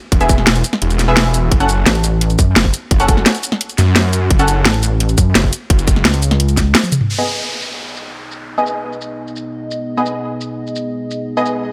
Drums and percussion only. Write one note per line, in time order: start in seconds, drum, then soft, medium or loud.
0.12 kick loud
0.12 closed hi-hat medium
0.21 closed hi-hat soft
0.21 shaker soft
0.29 kick loud
0.29 closed hi-hat medium
0.29 shaker medium
0.38 snare soft
0.47 snare loud
0.47 closed hi-hat medium
0.56 closed hi-hat soft
0.56 shaker soft
0.64 closed hi-hat medium
0.64 shaker medium
0.73 snare medium
0.82 closed hi-hat medium
0.91 closed hi-hat soft
0.91 shaker soft
0.99 snare soft
0.99 closed hi-hat medium
0.99 shaker medium
1.17 snare loud
1.17 closed hi-hat medium
1.34 closed hi-hat medium
1.34 shaker medium
1.51 kick loud
1.51 closed hi-hat medium
1.60 closed hi-hat soft
1.60 shaker soft
1.69 closed hi-hat medium
1.69 shaker medium
1.86 snare loud
1.86 closed hi-hat medium
1.95 closed hi-hat soft
2.04 closed hi-hat medium
2.04 shaker medium
2.21 closed hi-hat medium
2.30 closed hi-hat soft
2.30 shaker soft
2.39 kick loud
2.39 closed hi-hat medium
2.39 shaker medium
2.56 snare loud
2.56 closed hi-hat medium
2.65 kick medium
2.74 closed hi-hat medium
2.74 shaker medium
2.91 kick loud
2.91 closed hi-hat medium
3.00 closed hi-hat soft
3.00 shaker soft
3.08 kick loud
3.08 closed hi-hat medium
3.08 shaker medium
3.17 snare soft
3.26 snare loud
3.26 closed hi-hat medium
3.35 closed hi-hat soft
3.35 shaker soft
3.43 closed hi-hat medium
3.43 shaker medium
3.52 snare soft
3.61 closed hi-hat medium
3.70 closed hi-hat soft
3.70 shaker soft
3.78 snare soft
3.78 closed hi-hat medium
3.78 shaker medium
3.96 snare loud
3.96 closed hi-hat medium
4.13 closed hi-hat medium
4.13 shaker medium
4.31 kick loud
4.31 closed hi-hat medium
4.39 closed hi-hat soft
4.39 shaker soft
4.48 closed hi-hat medium
4.48 shaker medium
4.65 snare loud
4.65 closed hi-hat medium
4.74 closed hi-hat soft
4.83 closed hi-hat medium
4.83 shaker medium
5.00 closed hi-hat medium
5.09 closed hi-hat soft
5.09 shaker soft
5.18 kick loud
5.18 closed hi-hat medium
5.18 shaker medium
5.35 snare loud
5.35 closed hi-hat loud
5.44 kick medium
5.53 closed hi-hat medium
5.53 shaker medium
5.70 kick loud
5.70 closed hi-hat loud
5.79 closed hi-hat soft
5.79 shaker soft
5.88 kick loud
5.88 closed hi-hat medium
5.88 shaker medium
5.96 snare soft
6.05 snare loud
6.05 closed hi-hat loud
6.14 closed hi-hat soft
6.14 shaker soft
6.22 closed hi-hat medium
6.22 shaker medium
6.31 snare medium
6.31 closed hi-hat soft
6.40 closed hi-hat loud
6.49 closed hi-hat soft
6.49 shaker soft
6.57 kick medium
6.57 snare soft
6.57 closed hi-hat medium
6.57 shaker medium
6.75 snare loud
6.75 closed hi-hat loud
6.83 high tom medium
6.83 shaker soft
6.92 closed hi-hat medium
6.92 mid tom medium
6.92 shaker medium
7.01 mid tom medium
7.18 shaker soft
7.27 shaker medium
7.62 shaker medium
7.88 shaker soft
7.97 shaker medium
8.32 shaker medium
8.58 shaker soft
8.67 shaker medium
8.93 shaker soft
9.01 shaker medium
9.28 shaker soft
9.36 shaker medium
9.71 shaker medium
9.97 shaker soft
10.06 shaker medium
10.41 shaker medium
10.67 shaker soft
10.76 shaker medium
11.11 shaker medium
11.37 shaker soft
11.46 shaker medium